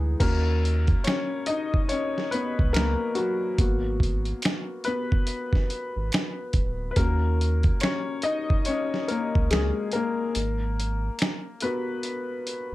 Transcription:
Already playing: D2 E3 G#3 B3 D#4
0.20 D#2 A#3 C#4 F#4 A#4, kick, closed hi-hat, crash
0.65 closed hi-hat
0.87 kick, closed hi-hat
1.04 C#4 C#5, finger snap, closed hi-hat
1.07 finger snap, snare
1.46 D#4 D#5, closed hi-hat
1.74 kick
1.89 C#4 C#5, closed hi-hat
2.18 snare
2.31 B3 B4, closed hi-hat
2.59 C#2, kick
2.73 A#3 A#4, finger snap, closed hi-hat
2.76 finger snap, snare
3.15 F#3 F#4, closed hi-hat
3.58 G#1 A#3 B3 F#4, kick, closed hi-hat
4.00 kick, closed hi-hat
4.25 closed hi-hat
4.42 finger snap, closed hi-hat
4.45 finger snap, snare
4.84 B3 B4, closed hi-hat
5.12 kick
5.27 closed hi-hat
5.53 kick, snare
5.70 closed hi-hat
5.96 G#1
6.12 finger snap, snare, closed hi-hat
6.53 D1, kick, closed hi-hat
6.91 B4
6.96 D#2 A#3 C#4 F#4 A#4, kick, closed hi-hat
7.41 closed hi-hat
7.63 kick, closed hi-hat
7.80 C#5, finger snap, closed hi-hat
7.83 C#4, finger snap, snare
8.22 D#4 D#5, closed hi-hat
8.50 kick
8.65 C#4 C#5, closed hi-hat
8.94 snare
9.08 A#3 A#4, closed hi-hat
9.35 C#2, kick
9.51 G#4, finger snap, closed hi-hat
9.53 G#3, finger snap, snare
9.91 A#3 A#4, closed hi-hat
10.35 G#1, closed hi-hat
10.80 closed hi-hat
11.19 finger snap, closed hi-hat
11.22 finger snap, snare
11.60 B3 F#4 A#4 B4, closed hi-hat
12.03 closed hi-hat
12.47 closed hi-hat

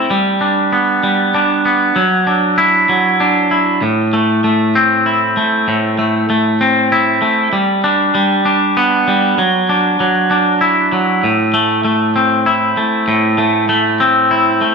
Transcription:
Already playing: A3 C4 E4
0.10 G3
0.41 D4
0.73 B3
1.03 G3
1.34 D4
1.65 B3
1.96 F#3
2.27 D4
2.58 E4
2.89 F#3
3.20 D4
3.51 E4
3.82 A2
4.13 A3
4.44 A3
4.75 C4
5.06 E4
5.37 A3
5.68 A2
5.99 A3
6.30 A3
6.61 C4
6.92 E4
7.22 A3
7.53 G3
7.84 D4
8.15 G3
8.45 D4
8.77 B3
9.08 G3
9.38 F#3
9.69 D4
10.00 F#3
10.31 D4
10.61 E4
10.92 F#3
11.24 A2
11.54 A3
11.85 A3
12.16 C4
12.46 E4
12.77 A3
13.08 A2
13.38 A3
13.69 A3
14.00 C4
14.31 E4
14.61 A3

